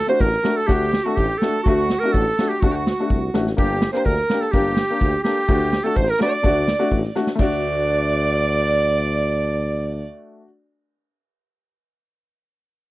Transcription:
0.00 0.10 A4 loud
0.07 0.26 A3 medium
0.07 0.26 D4 medium
0.07 0.27 F#4 medium
0.07 0.23 C5 medium
0.07 0.22 C5 loud
0.07 snare soft
0.20 0.35 A1 loud
0.20 0.58 A#4 loud
0.20 0.57 A#4 medium
0.20 kick medium
0.20 snare soft
0.33 snare soft
0.44 0.56 A3 medium
0.44 0.57 D4 medium
0.44 0.56 F#4 medium
0.44 snare medium
0.56 0.69 A4 loud
0.56 0.73 A4 medium
0.67 0.98 D2 medium
0.67 0.87 A3 medium
0.67 0.87 D4 medium
0.67 0.87 F#4 loud
0.67 1.05 G4 loud
0.67 kick medium
0.72 1.08 G4 medium
0.93 snare medium
1.04 1.24 A3 medium
1.04 1.24 D4 medium
1.04 1.17 F#4 medium
1.04 1.20 F#4 medium
1.04 1.25 A4 medium
1.16 1.31 A1 loud
1.16 1.40 G4 medium
1.16 1.45 G4 medium
1.16 kick medium
1.38 1.54 A3 medium
1.38 1.63 A4 medium
1.38 snare medium
1.43 1.55 D4 medium
1.43 1.55 F#4 medium
1.43 1.70 A4 medium
1.63 1.95 D2 medium
1.63 2.01 F#4 medium
1.63 kick medium
1.67 1.85 A3 loud
1.67 1.85 D4 medium
1.67 2.18 F#4 medium
1.67 1.86 F#4 medium
1.90 snare medium
1.99 2.21 A3 medium
1.99 2.14 A#4 loud
2.05 2.22 D4 medium
2.05 2.22 F#4 medium
2.12 2.28 A1 loud
2.12 2.50 A4 loud
2.12 kick medium
2.16 2.52 A4 medium
2.27 snare soft
2.39 2.51 A3 medium
2.39 2.51 D4 medium
2.39 2.51 F#4 medium
2.39 snare medium
2.49 2.62 G4 medium
2.49 2.65 G4 medium
2.60 2.91 D2 medium
2.60 2.81 A3 medium
2.60 2.81 D4 medium
2.60 3.34 F#4 medium
2.60 2.73 F#4 medium
2.60 2.81 F#4 loud
2.60 kick loud
2.60 snare soft
2.72 3.35 F#4 medium
2.72 2.77 G4 medium
2.87 snare medium
2.99 3.17 A3 medium
2.99 3.17 D4 medium
2.99 3.18 F#4 medium
2.99 snare soft
3.10 3.32 C2 medium
3.10 kick medium
3.34 3.56 A1 medium
3.34 3.46 A3 medium
3.34 3.47 D4 medium
3.34 3.47 F#4 loud
3.34 snare medium
3.46 snare medium
3.57 3.87 G1 medium
3.57 3.76 A#3 medium
3.57 3.76 D4 medium
3.57 3.92 G4 medium
3.57 3.77 G4 loud
3.57 3.92 G4 medium
3.57 kick loud
3.82 snare loud
3.93 4.12 A#3 medium
3.93 4.12 D4 medium
3.93 4.13 G4 medium
3.93 4.07 C5 medium
3.93 4.05 C5 medium
4.05 4.20 D2 medium
4.05 4.42 A#4 medium
4.05 4.44 A#4 medium
4.05 kick medium
4.05 snare soft
4.30 4.42 A#3 medium
4.30 4.43 D4 medium
4.30 4.43 G4 medium
4.30 snare medium
4.41 4.53 A4 medium
4.41 4.54 A4 medium
4.51 4.82 G1 medium
4.51 4.72 A#3 medium
4.51 4.72 D4 medium
4.51 5.23 G4 loud
4.51 5.25 G4 medium
4.51 4.72 G4 loud
4.51 kick medium
4.51 snare soft
4.76 snare loud
4.90 5.08 A#3 medium
4.90 5.08 D4 medium
4.90 5.08 G4 medium
5.01 5.16 D2 medium
5.01 kick medium
5.23 5.37 A#3 medium
5.23 5.37 D4 medium
5.23 5.85 G4 medium
5.23 5.87 G4 medium
5.23 5.38 A4 medium
5.23 snare medium
5.48 5.77 D2 medium
5.48 5.67 A3 medium
5.48 5.68 D4 medium
5.48 5.68 F#4 medium
5.48 kick loud
5.73 snare medium
5.84 6.02 A3 medium
5.84 6.03 D4 medium
5.84 6.03 F#4 medium
5.84 5.98 A4 medium
5.84 5.97 A4 medium
5.95 6.11 A1 loud
5.95 6.08 C5 medium
5.95 6.11 C5 loud
5.95 kick medium
6.08 6.21 A#4 medium
6.08 6.21 A#4 loud
6.19 6.32 A3 medium
6.19 6.32 D4 medium
6.19 6.32 F#4 medium
6.19 7.15 D5 medium
6.19 7.12 D5 medium
6.19 snare medium
6.43 6.73 D2 loud
6.43 6.62 A3 medium
6.43 6.62 D4 medium
6.43 6.63 F#4 loud
6.43 kick medium
6.68 snare medium
6.79 6.97 A3 medium
6.79 6.98 D4 medium
6.79 6.98 F#4 loud
6.91 7.05 A1 loud
6.91 kick medium
7.04 snare soft
7.15 7.27 A3 medium
7.15 7.28 D4 medium
7.15 7.28 F#4 loud
7.15 snare medium
7.27 snare medium
7.35 10.04 D2 medium
7.35 10.40 A3 medium
7.35 10.43 D4 medium
7.35 kick medium
7.35 crash medium
7.40 10.46 F#4 medium
7.40 10.04 D5 loud
7.40 10.05 D5 loud

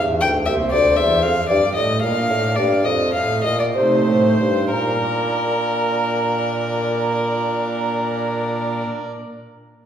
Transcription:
0.00 0.20 E2 medium
0.00 0.22 E2 medium
0.00 0.24 F5 medium
0.21 0.47 D2 medium
0.21 0.45 D2 medium
0.21 0.29 G5 medium
0.21 0.50 G5 medium
0.46 0.59 C2 medium
0.46 0.70 C2 medium
0.46 0.70 A#3 soft
0.46 0.70 C4 soft
0.46 1.20 C5 soft
0.46 0.54 E5 medium
0.46 0.72 E5 medium
0.71 0.97 D2 medium
0.71 0.95 D2 soft
0.71 0.98 D5 medium
0.71 0.79 D5 medium
0.97 1.21 E2 soft
0.97 1.23 E2 medium
0.97 1.24 E5 medium
0.97 1.23 E5 medium
1.22 1.47 F2 medium
1.22 1.36 F2 medium
1.22 1.49 F5 medium
1.49 1.73 G2 soft
1.49 1.62 G2 medium
1.49 1.75 D5 medium
1.49 1.56 D5 medium
1.75 2.00 A2 medium
1.75 2.04 A2 medium
1.75 2.02 D#5 medium
1.75 1.82 D#5 medium
2.02 2.29 A#2 medium
2.02 2.27 A#2 soft
2.02 2.27 A#3 soft
2.02 2.82 D4 soft
2.02 2.82 A#4 soft
2.02 2.58 F5 medium
2.02 2.56 F5 medium
2.29 2.57 A2 medium
2.29 2.55 A2 soft
2.56 2.85 G2 medium
2.56 2.83 G2 soft
2.56 2.86 D5 medium
2.56 2.84 D5 medium
2.85 3.11 F2 soft
2.85 3.16 F2 medium
2.85 2.91 D#5 medium
2.85 3.13 D#5 medium
3.14 3.46 A2 medium
3.14 3.41 A2 soft
3.14 3.43 F5 medium
3.14 3.21 F5 medium
3.43 3.72 A#2 soft
3.43 3.76 A#2 medium
3.43 3.49 D#5 medium
3.43 3.59 D#5 medium
3.59 3.73 D5 medium
3.59 3.66 D5 medium
3.74 4.06 C3 medium
3.74 4.03 C3 soft
3.74 4.35 A3 soft
3.74 4.69 D#4 soft
3.74 4.70 C5 medium
3.74 4.69 C5 soft
4.06 4.38 A2 soft
4.06 4.36 A2 soft
4.39 4.71 G2 medium
4.39 4.69 G2 soft
4.72 8.83 A#2 medium
4.72 8.84 A#2 soft
4.72 8.84 A#4 medium
4.72 8.83 A#5 medium
4.80 8.91 A#3 soft
4.87 8.98 D4 soft
4.94 9.05 A#4 soft
5.01 9.12 D5 soft

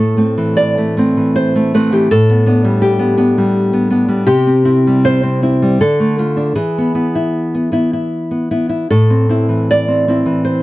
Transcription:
0.00 2.08 A2 medium
0.00 0.16 A3 soft
0.00 0.54 A4 medium
0.17 0.76 A3 soft
0.17 0.97 C4 soft
0.38 1.16 E3 soft
0.57 1.31 D5 medium
0.78 0.96 A3 soft
0.97 1.54 A3 soft
0.97 1.74 C4 soft
1.17 1.91 E3 soft
1.36 1.72 C5 medium
1.56 1.73 A3 soft
1.74 2.08 A3 soft
1.74 2.08 C4 soft
1.74 1.93 B4 medium
1.92 2.11 E3 soft
1.92 2.11 G4 medium
2.11 4.24 A2 medium
2.11 2.81 A4 medium
2.30 2.46 B3 soft
2.46 2.98 B3 soft
2.46 3.16 D4 medium
2.64 3.37 G3 soft
2.82 3.87 G4 medium
2.99 3.16 B3 soft
3.17 3.72 B3 soft
3.17 3.90 D4 medium
3.38 4.07 G3 medium
3.73 3.89 B3 medium
3.90 4.24 B3 soft
3.90 4.24 D4 medium
4.08 4.27 G3 soft
4.27 5.77 C3 medium
4.27 5.02 G4 medium
4.47 4.64 C4 medium
4.65 5.22 C4 medium
4.65 5.42 E4 medium
4.87 5.61 G3 medium
5.05 5.78 C5 medium
5.23 5.41 C4 soft
5.42 5.77 C4 soft
5.42 5.77 E4 medium
5.62 5.81 G3 soft
5.81 6.54 D3 medium
5.81 6.53 A4 medium
6.00 6.17 A3 soft
6.18 6.53 A3 soft
6.18 6.53 F4 soft
6.37 6.56 D4 soft
6.55 8.85 E3 soft
6.55 8.07 G#4 medium
6.78 6.94 B3 soft
6.95 7.53 B3 soft
6.95 7.14 E4 soft
7.15 7.72 E4 soft
7.55 7.71 B3 soft
7.72 8.30 B3 soft
7.72 7.92 E4 soft
7.93 8.50 E4 soft
8.31 8.50 B3 soft
8.51 8.86 B3 soft
8.51 8.68 E4 soft
8.69 8.89 E4 soft
8.90 10.63 A2 medium
8.90 9.68 A4 medium
9.10 9.28 C4 soft
9.29 9.87 C4 soft
9.29 10.08 E4 soft
9.49 10.25 E3 soft
9.71 10.43 D5 medium
9.88 10.07 C4 soft
10.08 10.63 C4 soft
10.08 10.63 E4 soft
10.26 10.63 E3 soft
10.45 10.63 C5 medium

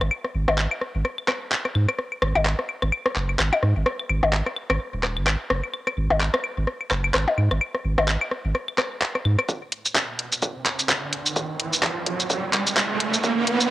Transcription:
0.01 0.09 G#1 medium
0.01 cross-stick soft
0.01 claves medium
0.11 claves medium
0.24 cross-stick soft
0.35 0.46 G#1 medium
0.48 0.67 G#1 medium
0.48 cross-stick medium
0.48 percussion blips medium
0.48 claves soft
0.58 clap medium
0.58 claves medium
0.71 claves medium
0.81 cross-stick soft
0.95 1.03 G#1 medium
1.05 cross-stick soft
1.05 claves soft
1.18 claves medium
1.28 cross-stick medium
1.28 clap medium
1.28 claves medium
1.52 clap medium
1.65 cross-stick soft
1.65 claves soft
1.75 1.86 G#2 medium
1.75 claves medium
1.89 cross-stick soft
1.89 claves medium
1.99 cross-stick soft
2.12 claves soft
2.22 2.33 G#1 medium
2.22 cross-stick medium
2.22 claves medium
2.35 2.55 G#1 medium
2.35 percussion blips medium
2.35 claves medium
2.46 clap medium
2.59 cross-stick soft
2.69 claves soft
2.82 2.91 G#1 medium
2.82 cross-stick soft
2.82 claves medium
2.92 claves medium
3.06 cross-stick medium
3.16 3.36 F#1 medium
3.16 clap medium
3.29 claves soft
3.39 3.51 G#1 medium
3.39 cross-stick soft
3.39 clap medium
3.39 claves medium
3.53 percussion blips medium
3.53 claves medium
3.63 3.74 G#2 loud
3.63 cross-stick soft
3.76 3.84 G#1 medium
3.86 cross-stick medium
3.86 claves soft
4.00 claves medium
4.09 4.21 G#1 medium
4.09 claves medium
4.23 4.42 G#1 medium
4.23 cross-stick soft
4.23 percussion blips medium
4.33 clap medium
4.46 cross-stick soft
4.46 claves soft
4.56 claves medium
4.70 4.78 G#1 medium
4.70 cross-stick medium
4.70 claves medium
4.93 5.18 D#1 medium
5.03 cross-stick soft
5.03 clap medium
5.03 claves soft
5.17 5.36 G#1 medium
5.17 claves medium
5.27 cross-stick soft
5.27 clap medium
5.27 claves medium
5.50 5.61 F#1 medium
5.50 cross-stick medium
5.63 claves soft
5.74 claves medium
5.87 cross-stick soft
5.87 claves medium
5.97 6.08 G#1 medium
6.10 6.30 G#1 medium
6.10 cross-stick soft
6.10 percussion blips medium
6.20 clap medium
6.20 claves soft
6.34 cross-stick medium
6.34 claves medium
6.44 claves medium
6.57 6.66 G#1 medium
6.67 cross-stick soft
6.81 claves soft
6.91 7.11 F#1 medium
6.91 cross-stick soft
6.91 clap medium
6.91 claves medium
7.04 claves medium
7.14 7.25 G#1 medium
7.14 cross-stick medium
7.14 clap medium
7.28 percussion blips medium
7.38 7.49 G#2 loud
7.38 claves soft
7.51 7.59 G#1 medium
7.51 cross-stick soft
7.51 claves medium
7.61 claves medium
7.75 cross-stick soft
7.85 7.96 G#1 medium
7.98 8.17 G#1 medium
7.98 cross-stick medium
7.98 percussion blips medium
7.98 claves soft
8.08 clap medium
8.08 claves medium
8.21 claves medium
8.31 cross-stick soft
8.45 8.53 G#1 loud
8.55 cross-stick soft
8.55 claves soft
8.68 claves medium
8.78 cross-stick medium
8.78 clap medium
8.78 claves medium
9.02 clap medium
9.15 cross-stick soft
9.15 claves soft
9.25 9.36 G#2 medium
9.25 claves medium
9.39 cross-stick soft
9.39 claves medium
9.49 kick loud
9.49 riser medium
9.49 shaker soft
9.72 closed hi-hat medium
9.86 shaker medium
9.96 kick loud
9.96 clap medium
9.96 shaker soft
10.19 closed hi-hat medium
10.32 closed hi-hat soft
10.32 shaker medium
10.42 kick loud
10.42 shaker soft
10.66 clap medium
10.66 closed hi-hat medium
10.79 closed hi-hat soft
10.79 shaker soft
10.89 kick loud
10.89 clap medium
10.89 shaker soft
11.13 closed hi-hat medium
11.26 shaker medium
11.36 kick loud
11.36 shaker soft
11.60 closed hi-hat medium
11.73 shaker medium
11.83 kick loud
11.83 clap medium
11.83 shaker soft
12.06 kick medium
12.06 closed hi-hat medium
12.20 closed hi-hat soft
12.20 shaker medium
12.30 kick loud
12.30 shaker soft
12.53 clap medium
12.53 closed hi-hat medium
12.67 closed hi-hat soft
12.67 shaker medium
12.77 kick loud
12.77 clap loud
12.77 shaker soft
13.00 closed hi-hat loud
13.14 shaker medium
13.24 kick loud
13.24 shaker soft
13.47 closed hi-hat medium
13.60 shaker medium

